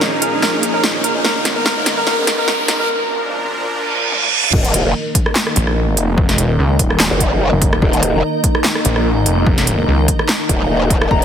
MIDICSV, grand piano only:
0, 0, Header, 1, 2, 480
1, 0, Start_track
1, 0, Key_signature, -6, "minor"
1, 0, Tempo, 410959
1, 1455, Time_signature, 4, 2, 24, 8
1, 13136, End_track
2, 0, Start_track
2, 0, Title_t, "Grand piano"
2, 0, Program_c, 0, 0
2, 14, Note_on_c, 0, 63, 60
2, 84, Note_off_c, 0, 63, 0
2, 144, Note_on_c, 0, 63, 63
2, 204, Note_off_c, 0, 63, 0
2, 253, Note_on_c, 0, 70, 90
2, 324, Note_off_c, 0, 70, 0
2, 382, Note_on_c, 0, 63, 62
2, 443, Note_off_c, 0, 63, 0
2, 494, Note_on_c, 0, 70, 94
2, 564, Note_off_c, 0, 70, 0
2, 624, Note_on_c, 0, 63, 61
2, 683, Note_off_c, 0, 63, 0
2, 733, Note_on_c, 0, 63, 59
2, 803, Note_off_c, 0, 63, 0
2, 862, Note_on_c, 0, 70, 91
2, 922, Note_off_c, 0, 70, 0
2, 973, Note_on_c, 0, 63, 65
2, 1043, Note_off_c, 0, 63, 0
2, 1103, Note_on_c, 0, 63, 63
2, 1163, Note_off_c, 0, 63, 0
2, 1212, Note_on_c, 0, 70, 88
2, 1283, Note_off_c, 0, 70, 0
2, 1343, Note_on_c, 0, 63, 65
2, 1403, Note_off_c, 0, 63, 0
2, 1452, Note_on_c, 0, 70, 96
2, 1523, Note_off_c, 0, 70, 0
2, 1582, Note_on_c, 0, 63, 65
2, 1642, Note_off_c, 0, 63, 0
2, 1696, Note_on_c, 0, 63, 57
2, 1765, Note_off_c, 0, 63, 0
2, 1822, Note_on_c, 0, 70, 92
2, 1882, Note_off_c, 0, 70, 0
2, 1933, Note_on_c, 0, 70, 100
2, 2003, Note_off_c, 0, 70, 0
2, 2064, Note_on_c, 0, 63, 65
2, 2123, Note_off_c, 0, 63, 0
2, 2174, Note_on_c, 0, 63, 65
2, 2244, Note_off_c, 0, 63, 0
2, 2305, Note_on_c, 0, 70, 93
2, 2364, Note_off_c, 0, 70, 0
2, 2414, Note_on_c, 0, 70, 98
2, 2484, Note_off_c, 0, 70, 0
2, 2542, Note_on_c, 0, 63, 65
2, 2603, Note_off_c, 0, 63, 0
2, 2652, Note_on_c, 0, 63, 62
2, 2723, Note_off_c, 0, 63, 0
2, 2780, Note_on_c, 0, 70, 92
2, 2841, Note_off_c, 0, 70, 0
2, 2893, Note_on_c, 0, 70, 101
2, 2964, Note_off_c, 0, 70, 0
2, 3023, Note_on_c, 0, 63, 65
2, 3083, Note_off_c, 0, 63, 0
2, 3134, Note_on_c, 0, 63, 67
2, 3204, Note_off_c, 0, 63, 0
2, 3263, Note_on_c, 0, 70, 97
2, 3323, Note_off_c, 0, 70, 0
2, 12976, Note_on_c, 0, 82, 100
2, 13045, Note_off_c, 0, 82, 0
2, 13136, End_track
0, 0, End_of_file